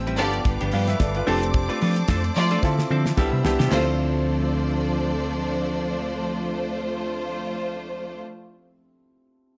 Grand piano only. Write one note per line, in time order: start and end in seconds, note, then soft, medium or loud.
0.00 0.18 C4 loud
0.00 0.18 E4 medium
0.00 0.18 G4 medium
0.00 0.19 B4 loud
0.17 1.10 B3 loud
0.17 1.10 D4 medium
0.17 0.73 F4 medium
0.17 0.73 A4 medium
0.73 0.87 B4 medium
0.73 0.87 F5 medium
0.88 1.00 B4 medium
0.88 0.99 E5 medium
1.00 1.15 A4 medium
1.00 1.14 D5 medium
1.16 1.42 F4 medium
1.16 1.41 B4 medium
1.26 2.19 C4 medium
1.26 2.19 D4 medium
1.26 2.19 G4 medium
1.26 2.19 A4 loud
2.62 3.09 C4 medium
2.62 3.10 E4 medium
2.62 3.10 F4 medium
2.62 3.10 A4 loud
3.16 3.40 B3 medium
3.16 3.41 D4 medium
3.16 3.41 E4 medium
3.16 3.41 G4 loud
3.44 3.68 B3 medium
3.44 3.68 D4 medium
3.44 3.68 E4 medium
3.44 3.68 G4 loud
3.68 8.17 C4 medium
3.68 8.19 E4 medium
3.72 8.21 F4 medium
3.72 8.23 A4 medium